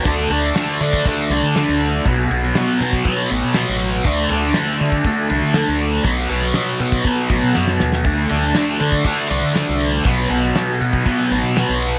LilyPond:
<<
  \new Staff \with { instrumentName = "Distorted electric guitar" } { \time 4/4 \key d \major \tempo 4 = 120 <d a d'>8 <a d'>8 <d a d'>8 <a d'>8 <d a d'>8 <a d'>8 <d a d'>4 | <b, fis b>8 <fis b>8 <b, fis b>8 <fis b>8 <b, fis b>8 <fis b>8 <b, fis b>4 | <d a d'>8 <a d'>8 <d a d'>8 <a d'>8 <d a d'>8 <a d'>8 <d a d'>4 | <b, fis b>8 <fis b>8 <b, fis b>8 <fis b>8 <b, fis b>8 <fis b>8 <b, fis b>4 |
<d a d'>8 <a d'>8 <d a d'>8 <a d'>8 <d a d'>8 <a d'>8 <d a d'>4 | <b, fis b>8 <fis b>8 <b, fis b>8 <fis b>8 <b, fis b>8 <fis b>8 <b, fis b>4 | }
  \new Staff \with { instrumentName = "Fingered electric bass" } { \clef bass \time 4/4 \key d \major d,8 d,8 r8 d8 r8 c,16 d8 d,8. | b,,8 b,,8 r8 b,8 r8 a,,16 b,8 a,,8. | d,8 d,8 r8 d8 r8 c,16 d8 d,8. | b,,8 b,,8 r8 b,8 r8 a,,16 b,16 fis,8 dis,8 |
d,8 d,8 r8 d8 r8 c,16 d8 c,8. | b,,8 b,,8 r8 b,8 r8 a,,16 b,8 b,,8. | }
  \new DrumStaff \with { instrumentName = "Drums" } \drummode { \time 4/4 <cymc bd>8 cymr8 <cymr sn>8 cymr16 bd16 <bd cymr>8 cymr8 <cymr sn>8 cymr8 | <bd cymr>8 cymr16 sn16 <cymr sn>8 cymr16 bd16 <bd cymr>8 cymr8 <cymr sn>8 cymr8 | <cymc bd>8 cymr8 <cymr sn>8 cymr16 bd16 <bd cymr>8 cymr8 <cymr sn>8 cymr8 | <bd cymr>8 cymr16 sn16 <cymr sn>8 cymr16 bd16 <bd cymr>8 <bd cymr>8 sn16 sn16 sn16 sn16 |
<cymc bd>8 cymr16 sn16 <cymr sn>8 cymr16 bd16 <bd cymr>8 cymr8 <cymr sn>8 cymr8 | <bd cymr>8 cymr16 sn16 <cymr sn>8 cymr16 bd16 <bd cymr>8 cymr8 <cymr sn>8 cymr8 | }
>>